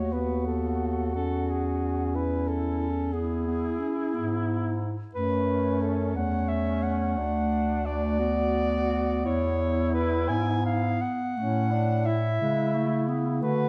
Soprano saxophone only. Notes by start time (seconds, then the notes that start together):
Already playing: C#5
0.12 B4
0.46 A4
1.15 A4
1.50 G#4
2.15 B4
2.48 A4
3.13 G#4
5.15 B4
5.82 A4
6.16 F#5
6.49 E5
6.83 F#5
7.86 D5
9.26 C#5
9.94 B4
10.28 G#5
10.65 F5
11.01 F#5
12.06 E5
13.42 B4